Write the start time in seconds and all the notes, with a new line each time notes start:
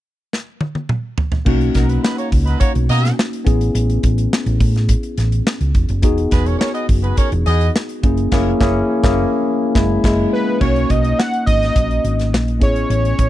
0.33 snare
0.61 high tom
0.75 high tom
0.89 mid tom
1.18 floor tom
1.32 floor tom
1.45 B1 A#3 C#4 D#4 F#4, kick, crash
1.61 closed hi-hat
1.75 B1 F#3 D#4 A#4, kick, snare, closed hi-hat
1.88 F#3 D#4 B4, closed hi-hat
2.02 F#3 D#4 B4, snare
2.17 A#3 F#4 C#5, closed hi-hat
2.32 C#2, kick, open hi-hat
2.45 F#3 D#4 B4, closed hi-hat
2.60 A#3 F#4 C#5, kick, closed hi-hat
2.75 B1, closed hi-hat
2.89 B2 A#3 F#4 D#5, closed hi-hat
3.05 snare, closed hi-hat
3.19 snare
3.33 closed hi-hat
3.45 A1 B3 C#4 E4 G#4, kick, closed hi-hat
3.61 closed hi-hat
3.75 A1, closed hi-hat
3.90 closed hi-hat
4.03 A1, kick, closed hi-hat
4.18 closed hi-hat
4.33 snare
4.46 A1, closed hi-hat
4.61 A2, kick, open hi-hat
4.76 snare, closed hi-hat
4.89 kick, closed hi-hat
5.03 closed hi-hat
5.18 A1, snare, closed hi-hat
5.32 closed hi-hat
5.47 snare
5.61 C#2, closed hi-hat
5.75 E1, kick, closed hi-hat
5.89 F#1, closed hi-hat
6.02 E1 B3 D#4 F#4 G#4, kick, closed hi-hat
6.18 closed hi-hat
6.31 E1 G#3 F#4 B4, kick, snare, closed hi-hat
6.46 C#4 A#4 C#5, closed hi-hat
6.59 C#4 A#4 C#5, snare
6.73 B3 G#4 D#5, closed hi-hat
6.89 F#1, kick, open hi-hat
7.02 G#3 F#4 B4, closed hi-hat
7.17 C#4 A#4 C#5, kick, closed hi-hat
7.32 E1, closed hi-hat
7.46 E2 B3 G#4 D#5, closed hi-hat
7.61 closed hi-hat
7.76 snare
7.89 closed hi-hat
8.03 F#1 A#3 C#4 E4 G#4, kick, closed hi-hat
8.17 closed hi-hat
8.31 F#1 A#3 C#4 E4 G#4, kick, snare, crash
8.60 F#1 A#3 C#4 E4 G#4, kick, snare
9.03 F#1 A#3 C#4 E4 G#4, kick, snare
9.75 F#1 G#3 E4, kick, snare
10.04 F#1 G#3 E4, kick, snare, crash
10.33 B4
10.61 B1 A#3 C#4 D#4 F#4 C#5, kick, crash
10.76 closed hi-hat
10.90 B1 D#5, kick, closed hi-hat
11.05 closed hi-hat
11.19 F#5, snare
11.34 closed hi-hat
11.46 G#1 D#5, kick, closed hi-hat
11.63 snare, closed hi-hat
11.76 A#1, kick, closed hi-hat
11.91 closed hi-hat
12.04 G#1, closed hi-hat
12.20 snare, closed hi-hat
12.33 A#1, snare
12.48 closed hi-hat
12.59 A1 B3 C#4 E4 G#4 C#5, kick, closed hi-hat
12.76 closed hi-hat
12.90 A1 C#5, closed hi-hat
13.05 closed hi-hat
13.19 A1, kick, closed hi-hat